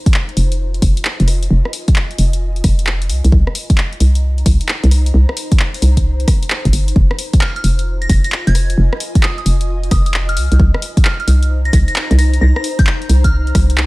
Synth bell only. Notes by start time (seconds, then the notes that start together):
7.41 F6
7.56 F6
8.02 A#6
8.09 A#6
8.24 A#6
8.47 G#6
9.23 D#6
9.38 D#6
9.91 D#6
10.06 D#6
10.29 F6
11.05 F6
11.20 F6
11.65 A#6
11.73 A#6
11.88 A#6
12.19 A#6
12.41 A#6
12.56 A#6
12.79 G6
12.87 G6
13.24 F6